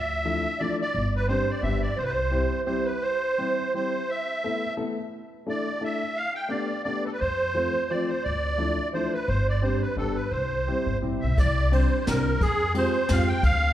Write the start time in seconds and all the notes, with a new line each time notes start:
Already playing: D2 E5
0.25 F3 A3 D4 E4
0.59 F3 A3 D4 E4 D5
0.82 D5
0.95 G1
1.16 B4
1.28 G3 C4 D4 G4 C5
1.50 D5
1.62 G1 G3 B3 D4 G4 E5
1.82 D5
1.97 C2 C5
2.03 B4
2.08 C5
2.31 G3 C4 E4 G4
2.66 G3 C4 E4 G4 C5
2.85 B4
3.01 C5
3.38 G3 C4 E4 G4
3.74 G3 C4 E4 G4 C5
4.10 E5
4.44 A3 B3 E4 A4
4.77 A3 B3 E4 A4
5.47 A3 D4 E4 A4 D5
5.81 A3 D4 E4 A4 E5
6.16 F5
6.35 G5
6.49 A3 B3 D4 G4 D5
6.84 A3 B3 D4 G4 D5
7.05 A4 B4
7.12 B4
7.20 F2 C5
7.54 F3 A3 C4 F4
7.90 F3 A3 C4 F4 D5
8.08 C5
8.24 D2 D5
8.58 F3 A3 D4 E4
8.94 F3 A3 D4 E4 C5
9.13 B4
9.28 G1 C5
9.48 D5
9.62 G3 C4 D4 G4 C5
9.81 B4
9.96 G1 G3 B3 D4 G4 A4
10.15 B4
10.30 C2 C5
10.68 G3 C4 E4 G4
10.86 G1
11.02 A1 G3 C4 E4 G4
11.21 B1 E5
11.37 C2 D5, kick, ride
11.72 G3 C4 D4 G4 C5, ride
12.00 C5
12.07 C2 G3 C4 D4 G4 A#4, snare, ride
12.41 F2 G#4, kick, ride
12.74 G#3 C4 F4 G4 C5, ride
13.09 F2 G#3 C4 F4 G4 F5, snare, ride
13.28 G5
13.43 D2 F5, kick, ride